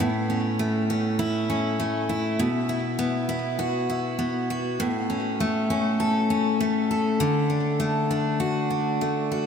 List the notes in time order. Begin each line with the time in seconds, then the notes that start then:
Already playing: C#4 E4
0.00 A2
0.30 C#4
0.59 A3
0.90 C#4
1.19 E4
1.50 C#4
1.80 A3
2.09 E4
2.39 B2
2.69 E4
2.99 B3
3.29 E4
3.59 F#4
3.90 E4
4.19 B3
4.50 F#4
4.80 A2
5.10 C#4
5.40 A3
5.70 C#4
6.00 A4
6.30 C#4
6.60 A3
6.91 A4
7.20 D3
7.50 D4
7.80 A3
8.11 D4
8.40 F#4
8.70 D4
9.01 A3
9.32 F#4